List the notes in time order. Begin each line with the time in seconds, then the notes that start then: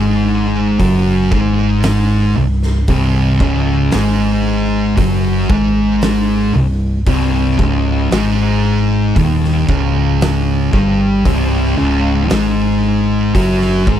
Already playing: G#1 G#2 G#3
0.80 F#1 F#2 F#3, kick, open hi-hat
1.32 G#1 G#2 G#3, kick
1.83 snare, open hi-hat
2.37 C1 C2
2.63 snare
2.88 C1 C2 C3, kick, open hi-hat
3.40 C#1 C#2 C#3, kick
3.91 G#1 G#2 G#3, snare, open hi-hat
4.97 F#1 F#2 F#3, kick, open hi-hat
5.49 G#1 G#2 G#3, kick
6.02 snare, open hi-hat
6.55 C1 C2
7.07 C1 C2 C3, kick, open hi-hat
7.59 C#1 C#2 C#3, kick
8.11 G#1 G#2 G#3, snare, open hi-hat
9.16 D#1 D#2 D#3, kick, open hi-hat
9.44 snare
9.68 C#1 C#2 C#3, kick
10.21 snare, open hi-hat
10.72 G1 G2 G3, kick
11.25 C1 C2 C3, kick, open hi-hat
11.77 C#1 C#2 C#3
12.30 G#1 G#2 G#3, snare, open hi-hat
13.34 F#1 F#2 F#3, kick, open hi-hat
13.61 snare
13.87 G#1 G#2 G#3, kick